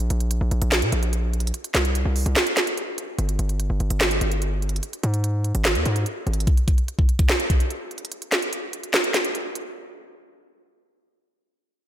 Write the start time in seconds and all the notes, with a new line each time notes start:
0.10 A#1, closed hi-hat
0.20 closed hi-hat
0.31 closed hi-hat
0.41 A#1
0.51 A#1, closed hi-hat
0.62 A#1, closed hi-hat
0.72 snare, clap, closed hi-hat
0.82 A#2, closed hi-hat
0.92 A#1, closed hi-hat
1.03 closed hi-hat
1.13 closed hi-hat
1.33 closed hi-hat
1.40 closed hi-hat
1.47 closed hi-hat
1.54 closed hi-hat
1.64 closed hi-hat
1.75 C2, snare, clap, closed hi-hat
1.85 closed hi-hat
1.95 closed hi-hat
2.05 C2
2.16 open hi-hat
2.26 C2, closed hi-hat
2.36 snare, clap, closed hi-hat
2.47 closed hi-hat
2.57 snare, clap, closed hi-hat
2.67 closed hi-hat
2.77 closed hi-hat
2.98 closed hi-hat
3.19 G1, closed hi-hat
3.29 closed hi-hat
3.39 G1, closed hi-hat
3.49 closed hi-hat
3.60 closed hi-hat
3.70 G1
3.80 G1, closed hi-hat
3.90 G1, closed hi-hat
4.01 snare, clap, closed hi-hat
4.11 closed hi-hat
4.21 G1, closed hi-hat
4.32 closed hi-hat
4.42 closed hi-hat
4.62 closed hi-hat
4.69 closed hi-hat
4.76 closed hi-hat
4.83 closed hi-hat
4.93 closed hi-hat
5.03 G#2, closed hi-hat
5.14 closed hi-hat
5.24 closed hi-hat
5.44 closed hi-hat
5.55 G#1, closed hi-hat
5.65 snare, clap, closed hi-hat
5.75 D#2, closed hi-hat
5.86 G#2, closed hi-hat
5.96 closed hi-hat
6.06 closed hi-hat
6.27 G#1, closed hi-hat
6.33 closed hi-hat
6.40 closed hi-hat
6.47 kick, closed hi-hat
6.57 closed hi-hat
6.68 kick, closed hi-hat
6.78 closed hi-hat
6.88 closed hi-hat
6.99 kick
7.09 closed hi-hat
7.19 kick, closed hi-hat
7.29 snare, clap, closed hi-hat
7.40 closed hi-hat
7.50 kick, closed hi-hat
7.60 closed hi-hat
7.70 closed hi-hat
7.91 closed hi-hat
7.98 closed hi-hat
8.05 closed hi-hat
8.12 closed hi-hat
8.22 closed hi-hat
8.32 snare, clap, closed hi-hat
8.42 closed hi-hat
8.53 closed hi-hat
8.73 closed hi-hat
8.83 closed hi-hat
8.94 snare, clap, closed hi-hat
9.04 closed hi-hat
9.14 snare, clap, closed hi-hat
9.25 closed hi-hat
9.35 closed hi-hat
9.55 closed hi-hat